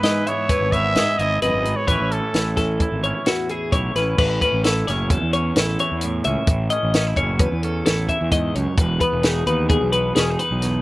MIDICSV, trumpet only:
0, 0, Header, 1, 2, 480
1, 0, Start_track
1, 0, Tempo, 460476
1, 1964, Time_signature, 5, 2, 24, 8
1, 11278, End_track
2, 0, Start_track
2, 0, Title_t, "Trumpet"
2, 0, Program_c, 0, 56
2, 0, Note_on_c, 0, 71, 87
2, 294, Note_on_c, 0, 73, 89
2, 310, Note_off_c, 0, 71, 0
2, 756, Note_on_c, 0, 76, 108
2, 771, Note_off_c, 0, 73, 0
2, 1238, Note_on_c, 0, 75, 95
2, 1253, Note_off_c, 0, 76, 0
2, 1477, Note_off_c, 0, 75, 0
2, 1484, Note_on_c, 0, 75, 87
2, 1839, Note_on_c, 0, 73, 83
2, 1855, Note_off_c, 0, 75, 0
2, 1957, Note_on_c, 0, 71, 91
2, 1973, Note_off_c, 0, 73, 0
2, 2212, Note_on_c, 0, 69, 74
2, 2228, Note_off_c, 0, 71, 0
2, 2689, Note_off_c, 0, 69, 0
2, 11278, End_track
0, 0, End_of_file